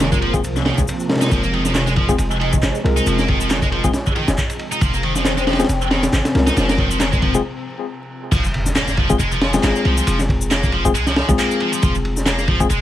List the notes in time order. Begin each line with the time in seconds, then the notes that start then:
Already playing: F1 C3 F3 G#3 A#3 C4 F4 A#4
0.00 D#3, snare, ride, shaker
0.12 G#3, kick, shaker
0.22 F3, ride
0.34 G#3 C4 F4 G#4, kick, shaker
0.43 C2, ride, shaker
0.56 snare, shaker
0.66 D#3, snare, ride
0.78 C2, kick, shaker
0.88 ride, shaker
1.00 shaker
1.09 G#3 C4 F4 A#4, snare, ride
1.15 snare, ride
1.21 D#4, snare, ride, shaker
1.26 snare, ride
1.31 F1 F3 G#3, kick, ride, shaker
1.43 A#3, shaker
1.53 D#3, ride
1.65 F3, snare, shaker
1.75 D#3, snare, clap, ride, shaker
1.87 G#3, snare, shaker
1.96 F3, kick, ride
2.09 G#3 C4 F4 G#4, kick, shaker
2.18 F1, ride, shaker
2.31 shaker
2.41 D#3, ride
2.53 kick, shaker
2.63 G#1, snare, clap, ride, shaker
2.75 shaker
2.84 C2 G#3 C4 F4 A#4, ride
2.96 D#4, ride, shaker
3.06 F1 F3, ride, shaker
3.18 A#3, snare, shaker
3.28 D#3, kick, ride
3.40 F3, shaker
3.50 D#3, snare, clap, ride, shaker
3.62 G#3, kick, shaker
3.72 F3, ride
3.84 G#3 C4 F4 G#4, kick, shaker
3.93 snare, ride, shaker
4.06 kick, shaker
4.16 D#3, ride
4.28 F1, snare, ride, shaker
4.38 kick, clap, shaker
4.50 ride, shaker
4.59 ride
4.72 D#4, ride, shaker
4.81 F1 F3 C4, kick, ride, shaker
4.94 A#3, shaker
5.03 D#3, ride
5.16 F3, snare, shaker
5.25 D#3, snare, clap, ride, shaker
5.37 G#3, snare, shaker
5.47 F3, snare, ride
5.53 snare, ride
5.59 G#3 C4 F4 G#4, snare, ride, shaker
5.64 snare, ride
5.69 F1, ride, shaker
5.81 shaker
5.91 D#3, snare, ride
6.03 snare, ride, shaker
6.12 G#1, snare, clap, ride, shaker
6.25 snare, ride, shaker
6.35 C2 G#3 C4 F4 A#4, snare, ride
6.47 D#4, snare, ride, shaker
6.57 F1 F3, snare, ride, shaker
6.69 A#3, snare, ride, shaker
6.78 D#3, kick, ride
6.91 F3, shaker
7.00 D#3, snare, clap, ride, shaker
7.13 G#3, kick, shaker
7.22 F3, kick, ride
7.35 G#3 C4 F4 G#4, shaker
8.32 F1 F3, kick, crash, ride, impact, shaker
8.44 shaker
8.54 ride
8.66 snare, shaker
8.75 A#3, snare, clap, ride, shaker
8.88 snare, shaker
8.97 F3, kick, ride
9.10 G#3 C4 F4 G#4, kick, shaker
9.19 F1 G#3, ride, shaker
9.32 F3, shaker
9.41 F3, snare, ride
9.53 G#3 C4 F4 G#4, snare, ride, shaker
9.63 G#1 A#3, snare, clap, ride, shaker
9.76 shaker
9.85 C2 F3, ride
9.97 F3, ride, shaker
10.07 F1 F3, ride, shaker
10.19 snare, shaker
10.29 kick, ride
10.41 shaker
10.51 A#3, snare, clap, ride, shaker
10.63 kick, shaker
10.72 F3, ride
10.85 G#3 C4 F4 G#4, kick, shaker
10.95 C2 G#3, ride, shaker
11.07 F3, snare, shaker
11.16 F3, snare, ride
11.29 C2 G#3 C4 F4 G#4, kick, shaker
11.39 A#3, clap, ride, shaker
11.51 shaker
11.60 F3, ride
11.72 F3, ride, shaker
11.82 F1 F3, kick, ride, shaker
11.95 shaker
12.05 ride
12.17 snare, shaker
12.26 A#3, snare, clap, ride, shaker
12.38 snare, shaker
12.48 F3, kick, ride
12.60 G#3 C4 F4 G#4, kick, shaker
12.70 F1 G#3, ride, shaker